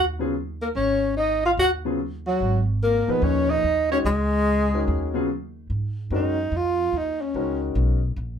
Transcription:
0.00 0.71 D#2 medium
0.19 0.32 C#3 medium
0.19 0.33 F#3 medium
0.19 0.33 B3 medium
0.19 0.33 F4 medium
0.19 0.33 G#4 medium
0.62 0.68 A#3 medium
0.62 0.68 A#4 medium
0.75 1.54 G#1 medium
0.75 1.14 C#4 medium
0.75 1.14 C#5 medium
1.17 1.42 D#4 medium
1.17 1.44 D#5 medium
1.46 1.51 F4 medium
1.46 1.52 F5 medium
1.57 2.36 D#2 medium
1.57 1.71 F#4 medium
1.57 1.72 F#5 medium
1.85 1.98 C#3 medium
1.85 1.98 F#3 medium
1.85 1.98 B3 medium
1.85 1.98 F4 medium
1.85 1.98 G#4 medium
2.27 2.65 F#3 medium
2.27 2.65 F#4 medium
2.40 3.04 G#1 medium
2.83 3.13 A#3 medium
2.83 3.11 A#4 medium
3.08 3.61 A#2 medium
3.08 3.61 F3 medium
3.08 3.26 B3 medium
3.08 3.61 D#4 medium
3.08 3.62 G#4 soft
3.08 3.62 B4 medium
3.08 3.25 B4 medium
3.08 muted upright bass stroke soft
3.22 3.61 D#2 medium
3.22 3.52 C#4 loud
3.22 3.51 C#5 medium
3.50 3.91 D#4 medium
3.50 3.91 D#5 medium
3.64 4.02 D#2 medium
3.90 4.04 D#3 medium
3.90 4.04 G#3 medium
3.90 4.04 C#4 medium
3.90 3.99 C#4 medium
3.90 4.04 F#4 medium
3.90 3.98 C#5 medium
3.90 4.05 C#5 medium
4.05 4.83 C#2 medium
4.05 5.25 G#3 loud
4.05 5.25 G#4 medium
4.73 5.11 D#3 medium
4.73 5.12 G#3 medium
4.73 5.12 C#4 medium
4.73 5.12 F#4 medium
4.73 5.12 A#4 medium
4.88 5.66 D#2 medium
5.14 5.27 C#3 medium
5.14 5.27 F#3 medium
5.14 5.27 B3 medium
5.14 5.28 F4 medium
5.14 5.28 G#4 medium
5.70 6.10 G#2 medium
6.10 6.51 F#2 medium
6.10 6.35 D#3 medium
6.10 6.35 G#3 medium
6.10 6.36 C#4 medium
6.10 6.36 F#4 medium
6.10 6.36 A#4 medium
6.15 6.58 D#4 medium
6.52 6.92 F2 medium
6.56 6.98 F4 medium
6.93 7.33 D#2 medium
6.97 7.23 D#4 medium
7.22 7.62 C#4 medium
7.34 7.74 C#2 medium
7.34 7.97 D#3 medium
7.34 7.97 G#3 medium
7.34 7.97 C#4 medium
7.34 7.98 F#4 medium
7.34 7.98 A#4 medium
7.75 8.15 B1 medium
8.16 8.39 A#1 medium

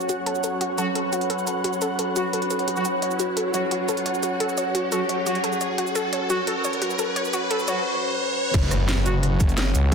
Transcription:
0.00 8.50 F#3 medium
0.00 8.50 C#4 medium
0.00 0.25 F#4 medium
0.00 7.85 F#4 medium
0.00 7.85 C#5 medium
0.00 7.85 F#5 medium
0.00 riser medium
0.00 cabasa soft
0.09 0.17 F#4 loud
0.09 closed hi-hat medium
0.09 cabasa medium
0.26 0.34 A4 loud
0.26 3.01 B4 medium
0.26 closed hi-hat medium
0.35 cabasa soft
0.44 0.51 A4 medium
0.44 closed hi-hat medium
0.44 cabasa medium
0.61 0.68 F#4 loud
0.61 closed hi-hat medium
0.78 0.88 F#3 medium
0.78 0.88 C#4 medium
0.78 0.88 F#4 loud
0.78 0.86 A4 loud
0.78 closed hi-hat medium
0.78 cabasa medium
0.95 1.03 A4 medium
0.95 closed hi-hat medium
1.13 1.20 F#4 loud
1.13 closed hi-hat medium
1.13 cabasa medium
1.21 closed hi-hat soft
1.30 1.37 A4 medium
1.30 closed hi-hat medium
1.39 cabasa soft
1.47 1.55 A4 medium
1.47 closed hi-hat medium
1.47 cabasa medium
1.64 1.72 F#4 loud
1.64 closed hi-hat medium
1.73 cabasa soft
1.82 1.89 A4 loud
1.82 closed hi-hat medium
1.82 cabasa medium
1.99 2.06 A4 medium
1.99 closed hi-hat medium
2.16 2.25 F#3 medium
2.16 2.25 C#4 medium
2.16 2.26 F#4 medium
2.16 2.24 F#4 medium
2.16 closed hi-hat medium
2.16 cabasa medium
2.33 2.41 A4 loud
2.33 closed hi-hat medium
2.42 closed hi-hat soft
2.51 2.62 A4 medium
2.51 closed hi-hat medium
2.51 cabasa medium
2.59 closed hi-hat soft
2.68 2.79 F#4 medium
2.68 closed hi-hat medium
2.76 2.86 F#3 medium
2.76 2.86 C#4 medium
2.76 2.86 F#4 loud
2.76 cabasa soft
2.85 2.90 F#5 medium
2.85 closed hi-hat medium
2.85 cabasa medium
3.02 5.77 F#4 medium
3.02 3.10 C#5 medium
3.02 closed hi-hat medium
3.11 cabasa soft
3.19 3.27 F#4 loud
3.19 closed hi-hat medium
3.19 cabasa medium
3.37 3.44 A4 loud
3.37 closed hi-hat medium
3.54 3.63 F#3 medium
3.54 3.63 C#4 medium
3.54 3.63 F#4 loud
3.54 3.62 C#5 medium
3.54 closed hi-hat medium
3.54 cabasa medium
3.71 3.79 F#4 loud
3.71 closed hi-hat medium
3.89 3.96 A4 loud
3.89 closed hi-hat medium
3.89 cabasa medium
3.97 closed hi-hat soft
4.06 4.13 C#5 medium
4.06 closed hi-hat medium
4.14 cabasa soft
4.23 4.30 F#4 loud
4.23 closed hi-hat medium
4.23 cabasa medium
4.40 4.48 A4 loud
4.40 closed hi-hat medium
4.49 cabasa soft
4.58 4.65 C#5 medium
4.58 closed hi-hat medium
4.58 cabasa medium
4.75 4.82 F#4 loud
4.75 closed hi-hat medium
4.92 5.01 F#3 medium
4.92 5.01 C#4 medium
4.92 5.01 F#4 medium
4.92 4.99 A4 loud
4.92 closed hi-hat medium
4.92 cabasa medium
5.09 5.17 C#5 medium
5.09 closed hi-hat medium
5.26 5.36 F#3 medium
5.26 5.36 C#4 medium
5.26 5.36 F#4 medium
5.26 5.34 F#4 loud
5.26 closed hi-hat medium
5.26 cabasa medium
5.35 closed hi-hat soft
5.44 5.51 A4 loud
5.44 closed hi-hat medium
5.52 cabasa soft
5.61 5.68 C#5 medium
5.61 closed hi-hat medium
5.61 cabasa medium
5.78 5.86 F#4 loud
5.78 8.53 B4 medium
5.78 closed hi-hat loud
5.87 cabasa soft
5.95 6.03 A4 loud
5.95 closed hi-hat medium
5.95 cabasa medium
6.13 6.20 C#5 medium
6.13 closed hi-hat loud
6.30 6.39 F#3 medium
6.30 6.39 C#4 medium
6.30 6.39 F#4 loud
6.30 6.37 F#4 loud
6.30 closed hi-hat medium
6.30 cabasa medium
6.47 6.55 A4 loud
6.47 closed hi-hat medium
6.64 6.72 C#5 medium
6.64 closed hi-hat medium
6.64 cabasa medium
6.73 closed hi-hat soft
6.82 6.89 F#4 medium
6.82 closed hi-hat medium
6.90 cabasa soft
6.99 7.06 A4 medium
6.99 closed hi-hat medium
6.99 cabasa medium
7.16 7.24 C#5 medium
7.16 closed hi-hat medium
7.25 cabasa soft
7.33 7.41 F#4 loud
7.33 closed hi-hat medium
7.33 cabasa medium
7.51 7.58 A4 loud
7.51 closed hi-hat loud
7.59 cabasa soft
7.68 7.77 F#3 medium
7.68 7.77 C#4 medium
7.68 7.77 F#4 medium
7.68 7.75 C#5 medium
7.68 closed hi-hat medium
7.68 cabasa medium
8.54 9.39 F#1 loud
8.54 9.95 F#3 medium
8.54 9.95 C#4 medium
8.54 9.95 F#4 medium
8.54 kick loud
8.54 closed hi-hat medium
8.54 crash loud
8.54 impact medium
8.71 cross-stick soft
8.71 closed hi-hat medium
8.71 cabasa medium
8.89 snare loud
8.89 closed hi-hat loud
9.06 9.15 F#3 medium
9.06 9.15 C#4 medium
9.06 9.15 F#4 loud
9.06 closed hi-hat medium
9.06 cabasa medium
9.23 cross-stick soft
9.23 closed hi-hat loud
9.40 9.73 F#1 loud
9.40 kick loud
9.40 closed hi-hat medium
9.40 cabasa medium
9.49 closed hi-hat soft
9.49 cabasa soft
9.58 snare loud
9.58 closed hi-hat medium
9.75 9.95 C#2 loud
9.75 closed hi-hat medium
9.75 cabasa medium

